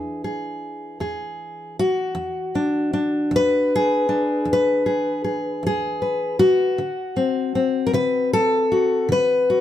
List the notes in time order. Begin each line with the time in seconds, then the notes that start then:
Already playing: E2 E3 D4 G#4 B4
0.24 G#4
1.00 E2 G#4
1.79 F#4
2.15 E2
2.55 D4
2.93 D4
3.31 E2
3.36 B4
3.76 G#4
4.09 D4
4.45 E2
4.53 B4
4.86 G#4
5.24 G#4
5.63 E2 G#4
6.02 B4
6.39 F#4
6.78 D3
7.17 C4
7.55 C4
7.87 A#4
7.93 D3 B4
8.33 A4
8.72 F#4
9.09 D3 B4
9.50 F#4